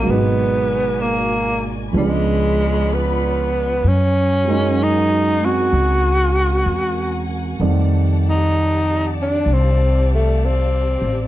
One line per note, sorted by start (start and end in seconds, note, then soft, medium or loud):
0.00 1.91 F#3 soft
0.00 1.91 G#3 soft
0.00 0.12 A#3 medium
0.00 1.90 D5 medium
0.05 1.90 G#1 medium
0.05 1.94 B2 soft
0.05 1.91 F#4 medium
0.05 1.91 A#4 medium
0.05 1.93 A#4 soft
0.05 1.91 G#5 medium
0.11 1.03 B3 medium
0.11 1.96 D#4 soft
1.02 1.76 A#3 medium
1.91 3.80 C#2 medium
1.91 3.83 F3 soft
1.91 3.83 G#3 soft
1.91 3.84 B3 soft
1.91 3.85 C#4 soft
1.91 3.82 F4 medium
1.91 3.82 C#5 soft
1.91 3.82 D5 soft
1.91 3.82 B5 medium
1.96 2.95 G#3 medium
1.96 3.85 D4 soft
2.94 3.90 B3 medium
3.84 5.68 F#2 medium
3.84 7.57 F#4 medium
3.84 7.57 A#4 soft
3.84 9.43 F#5 medium
3.84 7.56 G#5 medium
3.88 4.84 C#4 medium
4.45 7.59 F#3 soft
4.45 5.39 G#3 soft
4.45 7.60 A#3 soft
4.49 7.61 C#4 soft
4.49 7.61 D#4 soft
4.83 5.47 D#4 medium
5.41 7.60 G#3 soft
5.41 7.60 C4 soft
5.45 7.31 F#4 medium
5.73 6.62 C#2 medium
6.66 7.56 E2 medium
7.58 9.42 F2 medium
7.58 11.28 D#3 soft
7.58 11.28 G3 soft
7.58 11.28 A3 soft
7.58 11.28 C4 soft
7.58 11.28 G4 medium
7.58 11.28 D5 medium
7.58 11.28 D5 soft
7.58 11.28 A5 medium
8.29 9.15 D#4 medium
9.22 9.55 D4 medium
9.45 10.97 C2 medium
9.45 11.28 F5 medium
9.53 10.12 C4 medium
10.14 10.47 A3 medium
10.45 11.28 C4 medium
11.02 11.28 A1 medium